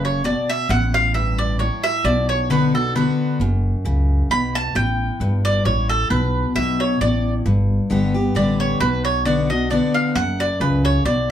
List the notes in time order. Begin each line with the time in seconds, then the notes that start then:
Already playing: F#1 F#2 C#3
0.05 C#5
0.24 B2 D5
0.50 E5
0.69 A1 A2 F#5
0.94 F5
1.14 G2 E5
1.38 D5
1.59 A2 C#5
1.84 E5
2.04 B1 B2 D5
2.29 C#5
2.50 D3 B3 D4 F#4 B4
2.74 D4 F#4 A4
2.95 D3 B3 D4 F#4 B4
3.40 F#1 F#2
3.85 C#2 C#3
4.30 B1 B2 B5
4.55 A5
4.75 A1 A2 G5
5.20 G1 G2
5.45 D5
5.65 A1 A2 C#5
5.89 A4
6.10 B1 B2 B4
6.55 B1 B2 E5
6.80 C#5
7.01 A1 A2 D5
7.46 G1 G2
7.90 G1 D3 G3 B3 G4
8.14 B3 G4
8.35 A1 D3 G3 B3 G4 D5
8.60 C#5
8.80 B1 B2 B4
9.05 C#5
9.25 D3 B3 D4 F#4 D5
9.50 D4 F#4 D#5
9.70 D3 B3 D4 F#4 D5
9.94 F5
10.15 F#1 F#2 F#5
10.40 D5
10.60 C#2 C#3 B4
10.85 C#5
11.05 B1 B2 D5